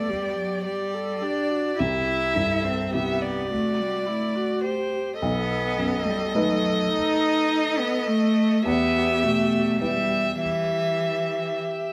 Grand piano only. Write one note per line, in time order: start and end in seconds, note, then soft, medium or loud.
0.00 0.10 G2 soft
0.00 0.10 D3 soft
0.00 1.75 B3 soft
0.00 1.75 G4 soft
1.80 3.46 C2 soft
2.36 3.27 G2 soft
2.94 5.17 C3 soft
2.94 5.17 E4 soft
2.94 5.18 G4 soft
5.22 6.90 B1 medium
5.78 6.70 F#2 soft
6.35 8.62 A3 soft
6.35 8.62 D#4 soft
6.35 8.62 B4 soft
8.66 10.36 E2 medium
9.23 10.17 B2 soft
9.81 11.93 G3 soft
9.81 11.93 E4 soft
9.81 11.93 B4 soft